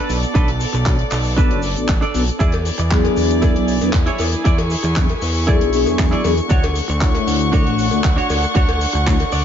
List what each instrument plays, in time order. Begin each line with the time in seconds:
Already playing: string section B3 A4 D5, clean electric guitar D4 A4 B4
0.10 analog synth bass B1, open hi-hat, shaker
0.22 closed hi-hat, shaker
0.34 analog synth bass B1, clean electric guitar D4 A4 B4, kick, closed hi-hat, shaker
0.48 closed hi-hat
0.60 muted clean electric guitar stroke, open hi-hat, shaker
0.73 analog synth bass B1, muted clean electric guitar stroke, closed hi-hat, shaker
0.85 analog polysynth B3 D4 F#4 A4 C#5, muted clean electric guitar stroke, kick, clap, closed hi-hat, shaker
0.99 closed hi-hat
1.10 analog synth bass B1, clap, open hi-hat, shaker
1.24 open hi-hat, shaker
1.36 analog polysynth B3 D4 F#4 A4 C#5, clean electric guitar D4 A4 B4, kick, closed hi-hat, shaker
1.51 analog synth bass F#1, closed hi-hat
1.62 open hi-hat, shaker
1.75 analog synth bass A1, analog polysynth B3 D4 F#4 A4 D5, closed hi-hat, shaker
1.89 analog synth bass A1, kick, clap, closed hi-hat, shaker
2.01 clean electric guitar D4 A4 D5, closed hi-hat
2.14 analog synth bass B1, analog polysynth B3 D4 F#4 A4 B4, open hi-hat, shaker
2.28 closed hi-hat, shaker
2.39 analog synth bass E2, clean electric guitar E4 G#4 D5, string section E4 G#4 D5, kick, closed hi-hat, shaker
2.52 closed hi-hat, cowbell
2.65 muted clean electric guitar stroke, open hi-hat, shaker
2.78 analog synth bass E2, muted clean electric guitar stroke, closed hi-hat, shaker
2.90 analog polysynth F#3 B3 D4 E4 G#4, muted clean electric guitar stroke, kick, clap, closed hi-hat, shaker
3.04 closed hi-hat, cowbell
3.17 analog synth bass E2, open hi-hat, shaker
3.30 closed hi-hat, shaker
3.42 clean electric guitar E4 G#4 D5, kick, closed hi-hat, cowbell, shaker
3.56 analog synth bass B1, closed hi-hat
3.68 open hi-hat, shaker
3.81 analog synth bass E2, analog polysynth F#3 B3 D4 E4 B4, closed hi-hat, cowbell, shaker
3.93 analog synth bass E2, kick, clap, closed hi-hat, shaker
4.06 clean electric guitar E4 G#4 C#5, closed hi-hat
4.18 analog synth bass E2, open hi-hat, cowbell, shaker
4.33 closed hi-hat, shaker
4.44 analog synth bass E2, clean electric guitar E4 G#4 D5, string section C#6, kick, closed hi-hat, shaker
4.58 closed hi-hat, cowbell
4.70 muted clean electric guitar stroke, open hi-hat, shaker
4.83 analog synth bass E2, muted clean electric guitar stroke, closed hi-hat, shaker
4.96 analog polysynth F#3 B3 D4 E4 G#4, muted clean electric guitar stroke, kick, clap, closed hi-hat, shaker
5.09 closed hi-hat, cowbell
5.22 analog synth bass E2, open hi-hat, shaker
5.35 open hi-hat, shaker
5.47 analog polysynth F#3 B3 D4 E4 G#4, clean electric guitar E4 G#4 D5, kick, closed hi-hat, cowbell, shaker
5.61 analog synth bass B1, closed hi-hat
5.73 analog polysynth F#3 B3 D4 E4 G#4, open hi-hat, shaker
5.86 analog synth bass E2, closed hi-hat, cowbell, shaker
5.99 analog synth bass E2, kick, clap, closed hi-hat, shaker
6.11 clean electric guitar E4 G#4 D5, closed hi-hat
6.24 analog synth bass E2, analog polysynth F#3 B3 D4 E4 G#4, open hi-hat, cowbell, shaker
6.38 closed hi-hat, shaker
6.49 analog synth bass D2, clean electric guitar D4 F#4 C#5, string section D4 F#5, kick, closed hi-hat, shaker
6.63 closed hi-hat, cowbell
6.75 muted clean electric guitar stroke, open hi-hat, shaker
6.88 analog synth bass D2, muted clean electric guitar stroke, closed hi-hat, shaker
7.01 analog polysynth A3 D4 E4 F#4 C#5, muted clean electric guitar stroke, kick, clap, closed hi-hat, shaker
7.15 closed hi-hat, cowbell
7.27 analog synth bass D2, open hi-hat, shaker
7.40 closed hi-hat, shaker
7.52 clean electric guitar D4 F#4 C#5, kick, closed hi-hat, cowbell, shaker
7.66 analog synth bass A1, closed hi-hat
7.79 open hi-hat, shaker
7.91 analog synth bass D2, analog polysynth A3 D4 E4 F#4 D5, closed hi-hat, cowbell, shaker
8.04 analog synth bass D2, kick, clap, closed hi-hat, shaker
8.16 clean electric guitar D4 F#4 C#5, closed hi-hat
8.30 analog synth bass D2, open hi-hat, cowbell, shaker
8.43 closed hi-hat, shaker
8.54 analog synth bass D2, clean electric guitar D4 F#4 C#5, kick, closed hi-hat, shaker
8.69 closed hi-hat, cowbell
8.80 muted clean electric guitar stroke, open hi-hat, shaker
8.93 analog synth bass D2, muted clean electric guitar stroke, closed hi-hat, shaker
9.06 analog polysynth A3 D4 E4 F#4 C#5, muted clean electric guitar stroke, kick, clap, closed hi-hat, shaker
9.20 closed hi-hat, cowbell
9.32 analog synth bass D2, clean electric guitar D5, open hi-hat, shaker